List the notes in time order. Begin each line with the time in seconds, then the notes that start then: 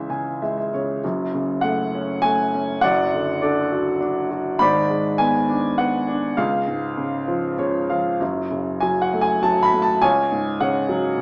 Already playing: C#2 C#3 E3 G#4 E5
0.10 C#3 G#5
0.42 G#3 E5
0.58 E5
0.74 C#3 C#5
1.04 F#1 F#2
1.34 C#3
1.61 A3 F#5
1.95 C#4
2.22 A3 G#5
2.54 C#4
2.81 F#1 F#2 D5 F#5
3.13 D3
3.41 D4 A4 D5
3.72 F#4
4.01 D4
4.31 F#4
4.59 G#1 G#2 D5 B5
4.90 G#3
5.18 B3 G#5
5.49 D4
5.78 B3 F#5
6.08 D4
6.37 C#2 G#4 F5
6.68 G#2
6.97 C#3
7.28 F3
7.58 C#3 C#5
7.89 F3 F5
8.21 F#1 F#2
8.51 C#3
8.80 F#3 G#5
9.02 F#5
9.13 A3
9.21 G#5
9.43 F#3 A5
9.63 B5
9.72 A3
9.82 A5
10.02 C#2 C#5 G#5
10.32 G#2
10.60 C#3 C#5 F#5
10.89 F#3
11.18 C#3